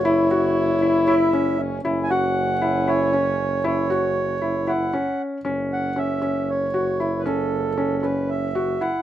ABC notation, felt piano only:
X:1
M:7/8
L:1/8
Q:1/4=116
K:F#m
V:1 name="Felt piano"
E F2 E E C2 | E F2 E E C2 | E F2 E E C2 | C2 C C2 F E |
C2 C C2 F E |]